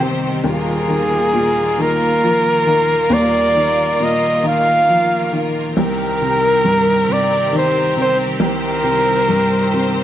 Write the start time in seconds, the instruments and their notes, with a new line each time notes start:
Already playing: felt piano C2 G2 D#3 D#5, string section D#3 C4 G4 C5
0.00 felt piano C3 G5
0.44 felt piano D#1 D#2, string section A#3 F4 A#4
0.49 flugelhorn G#4
0.88 felt piano D#3
1.33 felt piano A#2
1.78 felt piano D#3, flugelhorn A#4
2.23 felt piano F3
2.66 felt piano D#3
3.10 felt piano D#1 D#2, flugelhorn D5
3.55 felt piano D#3
4.00 felt piano A#2, flugelhorn D#5
4.43 felt piano D#3
4.48 flugelhorn F5
4.89 felt piano F3
5.32 felt piano D#3
5.76 felt piano C2, string section D#3 C4 G4 A#4
5.80 flugelhorn A#4
6.22 felt piano C3
6.65 felt piano G2
7.08 felt piano C3
7.13 flugelhorn D5
7.53 felt piano D#3
7.57 flugelhorn C5
7.97 felt piano C3
8.02 flugelhorn C5
8.40 felt piano C2, string section C5
8.47 flugelhorn A#4
8.84 felt piano C3
9.29 felt piano G2
9.74 felt piano C3